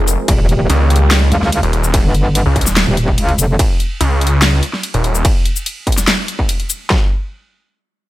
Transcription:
Already playing: F1 F3 G#3 C4 G#4 A#4
0.08 closed hi-hat, shaker
0.28 D#1 D#3 G3 A#3 G4, kick, closed hi-hat, ride
0.49 closed hi-hat
0.70 C#2, closed hi-hat, ride
0.90 closed hi-hat
0.96 closed hi-hat
1.11 snare, clap, closed hi-hat, ride
1.32 C#2, closed hi-hat
1.42 C#2, snare
1.52 closed hi-hat, ride
1.63 D#1, closed hi-hat
1.73 closed hi-hat
1.84 shaker
1.94 kick, closed hi-hat, ride
2.04 G1
2.15 closed hi-hat
2.35 closed hi-hat, ride
2.46 C#2
2.56 kick, closed hi-hat
2.61 closed hi-hat
2.67 D#1, snare, shaker
2.77 snare, clap, closed hi-hat, ride
2.87 D#1
2.97 closed hi-hat
3.08 kick
3.18 C#2, closed hi-hat, ride
3.29 closed hi-hat
3.39 F1, closed hi-hat, shaker
3.59 kick, closed hi-hat, ride
3.80 closed hi-hat
4.01 C#2, closed hi-hat, ride
4.21 closed hi-hat
4.27 closed hi-hat
4.42 snare, clap, closed hi-hat, ride
4.63 closed hi-hat
4.73 snare
4.83 closed hi-hat, ride
4.94 D#1, closed hi-hat
5.04 closed hi-hat
5.15 shaker
5.25 kick, closed hi-hat, ride
5.45 closed hi-hat
5.56 shaker
5.66 closed hi-hat, ride
5.87 kick, closed hi-hat
5.92 closed hi-hat
5.98 snare, closed hi-hat, shaker
6.08 snare, clap, closed hi-hat, ride
6.28 closed hi-hat
6.39 kick
6.49 closed hi-hat, ride
6.60 closed hi-hat
6.70 closed hi-hat, shaker
6.90 kick, snare

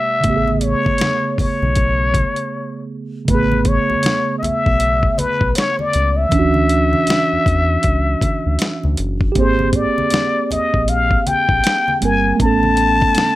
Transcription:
Already playing: C3 G#3 A#3 G4 E5
0.21 A1 C#3 A3, kick, closed hi-hat, muted conga, low conga
0.27 B3 G4
0.37 G#4
0.48 high conga
0.61 C#5, closed hi-hat
0.86 B1, kick, high conga
0.98 snare, closed hi-hat, muted conga, high conga
1.38 B1 C#5, kick, open hi-hat, muted conga, low conga
1.62 B1, high conga
1.76 kick, closed hi-hat, muted conga
2.14 kick, closed hi-hat, muted conga, high conga
2.36 closed hi-hat
3.25 A1 C#3 A3, kick, closed hi-hat, low conga
3.31 B3 B4
3.35 G#4
3.52 high conga
3.65 C#5, kick, closed hi-hat
3.90 B1, high conga
4.03 snare, closed hi-hat, muted conga, high conga
4.39 D#5, muted conga, low conga
4.43 B1 E5, closed hi-hat
4.66 B1, kick
4.80 closed hi-hat, muted conga
5.03 kick
5.18 B1 B4, closed hi-hat, muted conga, high conga
5.41 B1, kick
5.55 C#5, snare, closed hi-hat
5.79 D5, high conga
5.93 C#2, closed hi-hat, muted conga
6.17 E5
6.29 D2 E3 C#4, kick, closed hi-hat, muted conga, low conga
6.35 D4 F#4
6.54 high conga
6.69 closed hi-hat
6.93 high conga
7.07 snare, closed hi-hat, high conga
7.33 E2
7.46 E2, kick, closed hi-hat, muted conga, low conga
7.83 C#2, kick, closed hi-hat
8.21 kick, closed hi-hat, muted conga, high conga
8.46 D2
8.59 snare, closed hi-hat, muted conga
8.84 D2, high conga
8.97 F#1, closed hi-hat, muted conga
9.21 kick
9.32 A#3 G4, kick, closed hi-hat, low conga
9.36 G#1 C4 C5
9.42 G#4
9.59 high conga
9.73 D5, kick, closed hi-hat
9.98 A#1, high conga
10.11 snare, closed hi-hat, muted conga, high conga
10.51 A#1 D#5, closed hi-hat, muted conga, low conga
10.74 A#1, kick
10.88 F5, closed hi-hat, muted conga
11.11 kick
11.27 A#1 G5, closed hi-hat, high conga
11.49 A#1, kick
11.64 snare, closed hi-hat
11.88 high conga
12.01 G1 G3 A#3 C4 G#5, closed hi-hat, muted conga
12.05 A#4
12.36 A3 B3, kick, closed hi-hat, muted conga, low conga
12.41 A1 C#4 A5
12.46 A4
12.63 high conga
12.77 closed hi-hat
13.01 kick, high conga
13.15 snare, closed hi-hat, muted conga, high conga

